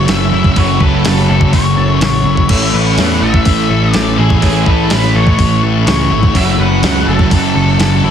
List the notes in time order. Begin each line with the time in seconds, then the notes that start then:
Already playing: F#2 C#3 F#3 A3 C#4 E4 F#4 A4 C#5 F#5 E6
0.08 F#1 E5, snare, open hi-hat
0.32 F#1 C#3 F#3 E4
0.44 kick
0.56 F#1 F#2 C#3 F#3 A3 C#4 F#4 C#5, kick, open hi-hat
0.80 F#1 A4 B4, kick
1.05 F#1 F#2 C#3 F#3, snare, open hi-hat
1.30 F#1 A4
1.41 kick
1.53 F#1 F#2 C#3 F#3 C#5, kick, open hi-hat
1.77 F#1 A4
2.01 A1 C#5, snare, open hi-hat
2.25 F#1 C#3 F#3 E4
2.37 kick
2.49 A1 A2 E3 A3 C#4 A4 E5, kick, crash
2.74 A1 B4 F#5
2.98 E2 A2 E3 A3, snare, open hi-hat
3.22 A1 A4 E5
3.34 kick
3.45 A1 A2 E3 A3, kick, open hi-hat
3.70 A1 A4
3.93 A1 D5, snare, open hi-hat
4.18 A1 E3 A3 E4 G#4
4.30 kick
4.41 A1 A2 E3 A3 C#4 A4 F#6, kick, open hi-hat
4.66 A1 A4 B4, kick
4.90 A1 A2 E3 A3 B4, snare, open hi-hat
5.15 A1 A4 C#5
5.27 kick
5.38 A1 A2 E3 A3, kick, open hi-hat
5.63 A1 A4
5.87 C#2 C#5, snare, open hi-hat
6.11 G#1 E3 A3 E4
6.23 kick
6.34 F#1 F#2 C#3 F#3 A3 C#4 F#4 C#5 E5 F#5 A5 E6, kick, open hi-hat
6.58 F#1 B4 F#5
6.83 C#2 F#2 C#3 F#3, snare, open hi-hat
7.07 F#1 A4
7.19 kick
7.31 F#1 F#2 C#3 F#3, kick, open hi-hat
7.55 F#1 A4
7.79 F#1, snare, open hi-hat
8.04 F#1 C#3 F#3 E4